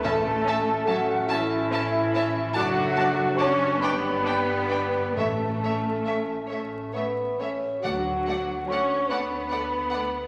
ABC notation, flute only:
X:1
M:6/8
L:1/8
Q:3/8=47
K:D
V:1 name="Flute"
a2 f e3 | f2 c' b2 z | a3 z3 | f2 c' b3 |]